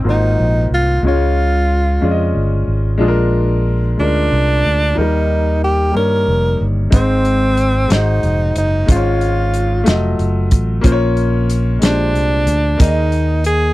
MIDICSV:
0, 0, Header, 1, 5, 480
1, 0, Start_track
1, 0, Key_signature, -4, "major"
1, 0, Tempo, 653595
1, 761, Time_signature, 6, 3, 24, 8
1, 10087, End_track
2, 0, Start_track
2, 0, Title_t, "Tenor saxophone"
2, 0, Program_c, 0, 66
2, 72, Note_on_c, 0, 63, 83
2, 508, Note_off_c, 0, 63, 0
2, 546, Note_on_c, 0, 65, 93
2, 758, Note_off_c, 0, 65, 0
2, 793, Note_on_c, 0, 65, 86
2, 1710, Note_off_c, 0, 65, 0
2, 2937, Note_on_c, 0, 62, 94
2, 3656, Note_on_c, 0, 63, 86
2, 3667, Note_off_c, 0, 62, 0
2, 4132, Note_off_c, 0, 63, 0
2, 4143, Note_on_c, 0, 67, 90
2, 4359, Note_off_c, 0, 67, 0
2, 4382, Note_on_c, 0, 70, 96
2, 4885, Note_off_c, 0, 70, 0
2, 5098, Note_on_c, 0, 60, 87
2, 5814, Note_on_c, 0, 63, 96
2, 5825, Note_off_c, 0, 60, 0
2, 6290, Note_off_c, 0, 63, 0
2, 6301, Note_on_c, 0, 63, 85
2, 6517, Note_off_c, 0, 63, 0
2, 6546, Note_on_c, 0, 65, 80
2, 7466, Note_off_c, 0, 65, 0
2, 8706, Note_on_c, 0, 62, 82
2, 9383, Note_off_c, 0, 62, 0
2, 9412, Note_on_c, 0, 63, 88
2, 9856, Note_off_c, 0, 63, 0
2, 9888, Note_on_c, 0, 68, 91
2, 10087, Note_off_c, 0, 68, 0
2, 10087, End_track
3, 0, Start_track
3, 0, Title_t, "Grand piano"
3, 0, Program_c, 1, 0
3, 0, Control_c, 1, 64, 127
3, 29, Note_on_c, 1, 58, 60
3, 36, Note_on_c, 1, 65, 55
3, 43, Note_on_c, 1, 44, 57
3, 45, Note_on_c, 1, 66, 49
3, 47, Control_c, 1, 64, 0
3, 61, Note_on_c, 1, 72, 62
3, 182, Control_c, 1, 64, 127
3, 530, Note_off_c, 1, 58, 0
3, 534, Note_off_c, 1, 65, 0
3, 538, Note_off_c, 1, 66, 0
3, 546, Note_off_c, 1, 72, 0
3, 734, Note_off_c, 1, 44, 0
3, 754, Note_on_c, 1, 56, 73
3, 768, Note_on_c, 1, 61, 61
3, 769, Note_on_c, 1, 49, 55
3, 770, Control_c, 1, 64, 0
3, 771, Note_on_c, 1, 65, 66
3, 784, Note_on_c, 1, 73, 79
3, 878, Control_c, 1, 64, 127
3, 1253, Note_off_c, 1, 56, 0
3, 1260, Note_off_c, 1, 61, 0
3, 1262, Note_off_c, 1, 65, 0
3, 1269, Note_off_c, 1, 73, 0
3, 1457, Note_off_c, 1, 49, 0
3, 1473, Note_on_c, 1, 56, 72
3, 1481, Note_on_c, 1, 61, 69
3, 1495, Note_on_c, 1, 65, 71
3, 1498, Note_on_c, 1, 74, 62
3, 1538, Note_off_c, 1, 74, 0
3, 1550, Note_on_c, 1, 75, 79
3, 1974, Note_off_c, 1, 56, 0
3, 1978, Note_off_c, 1, 61, 0
3, 1985, Note_off_c, 1, 65, 0
3, 2012, Note_off_c, 1, 75, 0
3, 2185, Note_on_c, 1, 56, 86
3, 2194, Note_on_c, 1, 62, 79
3, 2205, Note_on_c, 1, 46, 68
3, 2207, Note_on_c, 1, 65, 79
3, 2214, Note_on_c, 1, 68, 73
3, 2216, Control_c, 1, 64, 0
3, 2257, Note_off_c, 1, 68, 0
3, 2263, Note_on_c, 1, 70, 94
3, 2323, Control_c, 1, 64, 127
3, 2690, Note_off_c, 1, 56, 0
3, 2695, Note_off_c, 1, 62, 0
3, 2701, Note_off_c, 1, 65, 0
3, 2729, Note_off_c, 1, 70, 0
3, 2897, Note_off_c, 1, 46, 0
3, 2919, Note_on_c, 1, 56, 57
3, 2928, Note_on_c, 1, 61, 43
3, 2936, Note_on_c, 1, 65, 54
3, 2949, Note_on_c, 1, 70, 65
3, 2973, Note_on_c, 1, 62, 57
3, 2975, Note_off_c, 1, 61, 0
3, 3417, Note_off_c, 1, 56, 0
3, 3426, Note_off_c, 1, 65, 0
3, 3433, Note_off_c, 1, 70, 0
3, 3445, Note_off_c, 1, 62, 0
3, 3627, Note_on_c, 1, 53, 58
3, 3637, Note_on_c, 1, 58, 67
3, 3644, Note_on_c, 1, 51, 59
3, 3648, Note_on_c, 1, 63, 67
3, 3656, Control_c, 1, 64, 0
3, 3659, Note_on_c, 1, 70, 79
3, 3676, Note_on_c, 1, 55, 72
3, 3684, Note_off_c, 1, 53, 0
3, 3806, Control_c, 1, 64, 127
3, 4137, Note_off_c, 1, 58, 0
3, 4142, Note_off_c, 1, 63, 0
3, 4148, Note_off_c, 1, 70, 0
3, 4157, Note_off_c, 1, 55, 0
3, 4337, Note_off_c, 1, 51, 0
3, 4345, Note_on_c, 1, 55, 61
3, 4358, Note_on_c, 1, 58, 50
3, 4369, Note_on_c, 1, 63, 56
3, 4380, Note_on_c, 1, 73, 67
3, 4851, Note_off_c, 1, 55, 0
3, 4858, Note_off_c, 1, 58, 0
3, 4863, Note_off_c, 1, 63, 0
3, 4869, Note_off_c, 1, 73, 0
3, 5068, Note_on_c, 1, 56, 66
3, 5073, Note_on_c, 1, 60, 67
3, 5079, Note_on_c, 1, 44, 55
3, 5087, Note_on_c, 1, 63, 62
3, 5094, Note_on_c, 1, 72, 76
3, 5096, Control_c, 1, 64, 0
3, 5207, Control_c, 1, 64, 127
3, 5572, Note_off_c, 1, 56, 0
3, 5575, Note_off_c, 1, 60, 0
3, 5582, Note_off_c, 1, 63, 0
3, 5585, Note_off_c, 1, 72, 0
3, 5774, Note_off_c, 1, 44, 0
3, 5782, Note_on_c, 1, 56, 62
3, 5795, Note_on_c, 1, 63, 56
3, 5799, Note_on_c, 1, 44, 57
3, 5803, Note_on_c, 1, 66, 58
3, 5817, Note_on_c, 1, 72, 68
3, 5818, Control_c, 1, 64, 0
3, 5952, Control_c, 1, 64, 127
3, 6289, Note_off_c, 1, 56, 0
3, 6295, Note_off_c, 1, 63, 0
3, 6300, Note_off_c, 1, 66, 0
3, 6306, Note_off_c, 1, 72, 0
3, 6493, Note_off_c, 1, 44, 0
3, 6507, Note_on_c, 1, 56, 78
3, 6520, Note_on_c, 1, 61, 71
3, 6525, Note_on_c, 1, 44, 64
3, 6527, Note_on_c, 1, 65, 68
3, 6533, Note_on_c, 1, 72, 65
3, 6536, Control_c, 1, 64, 0
3, 6577, Note_off_c, 1, 72, 0
3, 6582, Note_on_c, 1, 73, 80
3, 6673, Control_c, 1, 64, 127
3, 7011, Note_off_c, 1, 56, 0
3, 7017, Note_off_c, 1, 61, 0
3, 7021, Note_off_c, 1, 65, 0
3, 7048, Note_off_c, 1, 73, 0
3, 7215, Note_off_c, 1, 44, 0
3, 7225, Note_on_c, 1, 57, 79
3, 7234, Note_on_c, 1, 65, 64
3, 7247, Note_on_c, 1, 54, 71
3, 7255, Control_c, 1, 64, 0
3, 7255, Note_on_c, 1, 75, 80
3, 7390, Control_c, 1, 64, 127
3, 7729, Note_off_c, 1, 57, 0
3, 7734, Note_off_c, 1, 65, 0
3, 7740, Note_off_c, 1, 54, 0
3, 7744, Note_off_c, 1, 75, 0
3, 7942, Note_on_c, 1, 58, 94
3, 7951, Note_on_c, 1, 61, 83
3, 7958, Note_on_c, 1, 46, 73
3, 7960, Note_on_c, 1, 65, 84
3, 7968, Note_on_c, 1, 72, 79
3, 7974, Control_c, 1, 64, 0
3, 8014, Note_off_c, 1, 72, 0
3, 8020, Note_on_c, 1, 73, 108
3, 8115, Control_c, 1, 64, 127
3, 8447, Note_off_c, 1, 58, 0
3, 8451, Note_off_c, 1, 61, 0
3, 8456, Note_off_c, 1, 65, 0
3, 8486, Note_off_c, 1, 73, 0
3, 8650, Note_off_c, 1, 46, 0
3, 8660, Note_on_c, 1, 56, 63
3, 8673, Note_on_c, 1, 61, 50
3, 8674, Note_on_c, 1, 46, 60
3, 8681, Note_on_c, 1, 67, 57
3, 8689, Note_on_c, 1, 72, 65
3, 8691, Control_c, 1, 64, 0
3, 8716, Note_on_c, 1, 62, 55
3, 8725, Note_off_c, 1, 61, 0
3, 8841, Control_c, 1, 64, 127
3, 9165, Note_off_c, 1, 56, 0
3, 9175, Note_off_c, 1, 67, 0
3, 9180, Note_off_c, 1, 72, 0
3, 9193, Note_off_c, 1, 62, 0
3, 9367, Note_off_c, 1, 46, 0
3, 9382, Note_on_c, 1, 58, 69
3, 9393, Note_on_c, 1, 63, 64
3, 9397, Note_on_c, 1, 51, 57
3, 9401, Note_on_c, 1, 68, 70
3, 9409, Note_on_c, 1, 74, 69
3, 9412, Control_c, 1, 64, 0
3, 9452, Note_off_c, 1, 74, 0
3, 9460, Note_on_c, 1, 75, 81
3, 9525, Control_c, 1, 64, 127
3, 9885, Note_off_c, 1, 58, 0
3, 9890, Note_off_c, 1, 63, 0
3, 9894, Note_off_c, 1, 68, 0
3, 9923, Note_off_c, 1, 75, 0
3, 10087, Note_off_c, 1, 51, 0
3, 10087, End_track
4, 0, Start_track
4, 0, Title_t, "Fingered electric bass"
4, 0, Program_c, 2, 33
4, 37, Note_on_c, 2, 32, 78
4, 259, Note_off_c, 2, 32, 0
4, 287, Note_on_c, 2, 34, 88
4, 505, Note_off_c, 2, 34, 0
4, 518, Note_on_c, 2, 36, 67
4, 741, Note_off_c, 2, 36, 0
4, 755, Note_on_c, 2, 37, 95
4, 1451, Note_off_c, 2, 37, 0
4, 1485, Note_on_c, 2, 41, 82
4, 1705, Note_off_c, 2, 41, 0
4, 1725, Note_on_c, 2, 31, 78
4, 1946, Note_off_c, 2, 31, 0
4, 1965, Note_on_c, 2, 32, 75
4, 2186, Note_off_c, 2, 32, 0
4, 2203, Note_on_c, 2, 34, 87
4, 2896, Note_off_c, 2, 34, 0
4, 2929, Note_on_c, 2, 38, 73
4, 3148, Note_off_c, 2, 38, 0
4, 3173, Note_on_c, 2, 36, 87
4, 3391, Note_off_c, 2, 36, 0
4, 3416, Note_on_c, 2, 38, 83
4, 3633, Note_off_c, 2, 38, 0
4, 3655, Note_on_c, 2, 39, 94
4, 4342, Note_off_c, 2, 39, 0
4, 4370, Note_on_c, 2, 43, 65
4, 4590, Note_off_c, 2, 43, 0
4, 4612, Note_on_c, 2, 29, 87
4, 4831, Note_off_c, 2, 29, 0
4, 4853, Note_on_c, 2, 31, 71
4, 5071, Note_off_c, 2, 31, 0
4, 5084, Note_on_c, 2, 32, 106
4, 5776, Note_off_c, 2, 32, 0
4, 5805, Note_on_c, 2, 32, 85
4, 6027, Note_off_c, 2, 32, 0
4, 6049, Note_on_c, 2, 29, 100
4, 6268, Note_off_c, 2, 29, 0
4, 6288, Note_on_c, 2, 30, 75
4, 6508, Note_off_c, 2, 30, 0
4, 6523, Note_on_c, 2, 32, 95
4, 7214, Note_off_c, 2, 32, 0
4, 7250, Note_on_c, 2, 29, 81
4, 7468, Note_off_c, 2, 29, 0
4, 7487, Note_on_c, 2, 30, 90
4, 7707, Note_off_c, 2, 30, 0
4, 7727, Note_on_c, 2, 33, 73
4, 7947, Note_off_c, 2, 33, 0
4, 7962, Note_on_c, 2, 34, 101
4, 8652, Note_off_c, 2, 34, 0
4, 8680, Note_on_c, 2, 34, 79
4, 8925, Note_off_c, 2, 34, 0
4, 8925, Note_on_c, 2, 36, 91
4, 9144, Note_off_c, 2, 36, 0
4, 9155, Note_on_c, 2, 38, 84
4, 9378, Note_off_c, 2, 38, 0
4, 9402, Note_on_c, 2, 39, 93
4, 10087, Note_off_c, 2, 39, 0
4, 10087, End_track
5, 0, Start_track
5, 0, Title_t, "Drums"
5, 5084, Note_on_c, 9, 42, 79
5, 5086, Note_on_c, 9, 36, 109
5, 5157, Note_off_c, 9, 42, 0
5, 5159, Note_off_c, 9, 36, 0
5, 5323, Note_on_c, 9, 42, 43
5, 5397, Note_off_c, 9, 42, 0
5, 5562, Note_on_c, 9, 42, 60
5, 5635, Note_off_c, 9, 42, 0
5, 5803, Note_on_c, 9, 42, 75
5, 5815, Note_on_c, 9, 38, 90
5, 5877, Note_off_c, 9, 42, 0
5, 5888, Note_off_c, 9, 38, 0
5, 6045, Note_on_c, 9, 42, 52
5, 6118, Note_off_c, 9, 42, 0
5, 6283, Note_on_c, 9, 42, 71
5, 6357, Note_off_c, 9, 42, 0
5, 6525, Note_on_c, 9, 42, 90
5, 6526, Note_on_c, 9, 36, 109
5, 6598, Note_off_c, 9, 42, 0
5, 6599, Note_off_c, 9, 36, 0
5, 6765, Note_on_c, 9, 42, 46
5, 6838, Note_off_c, 9, 42, 0
5, 7003, Note_on_c, 9, 42, 61
5, 7077, Note_off_c, 9, 42, 0
5, 7243, Note_on_c, 9, 42, 77
5, 7254, Note_on_c, 9, 38, 98
5, 7316, Note_off_c, 9, 42, 0
5, 7327, Note_off_c, 9, 38, 0
5, 7485, Note_on_c, 9, 42, 49
5, 7559, Note_off_c, 9, 42, 0
5, 7720, Note_on_c, 9, 42, 68
5, 7725, Note_on_c, 9, 36, 88
5, 7794, Note_off_c, 9, 42, 0
5, 7799, Note_off_c, 9, 36, 0
5, 7960, Note_on_c, 9, 42, 95
5, 7963, Note_on_c, 9, 36, 106
5, 8033, Note_off_c, 9, 42, 0
5, 8036, Note_off_c, 9, 36, 0
5, 8202, Note_on_c, 9, 42, 45
5, 8275, Note_off_c, 9, 42, 0
5, 8442, Note_on_c, 9, 42, 67
5, 8516, Note_off_c, 9, 42, 0
5, 8679, Note_on_c, 9, 42, 79
5, 8690, Note_on_c, 9, 38, 98
5, 8753, Note_off_c, 9, 42, 0
5, 8764, Note_off_c, 9, 38, 0
5, 8926, Note_on_c, 9, 42, 52
5, 9000, Note_off_c, 9, 42, 0
5, 9157, Note_on_c, 9, 42, 66
5, 9230, Note_off_c, 9, 42, 0
5, 9398, Note_on_c, 9, 42, 86
5, 9400, Note_on_c, 9, 36, 115
5, 9471, Note_off_c, 9, 42, 0
5, 9473, Note_off_c, 9, 36, 0
5, 9636, Note_on_c, 9, 42, 46
5, 9709, Note_off_c, 9, 42, 0
5, 9872, Note_on_c, 9, 42, 64
5, 9945, Note_off_c, 9, 42, 0
5, 10087, End_track
0, 0, End_of_file